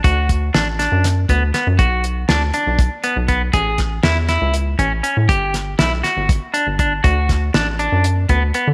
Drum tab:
HH |xxxxxxx|xxxxxxx|xxxxxxx|xxxxxxx|
SD |--ooo-o|--o----|-ooo---|-ooo---|
BD |oo---o-|o---o-o|oo---o-|o---o-o|

HH |xxxxxxx|
SD |-oo----|
BD |oo---o-|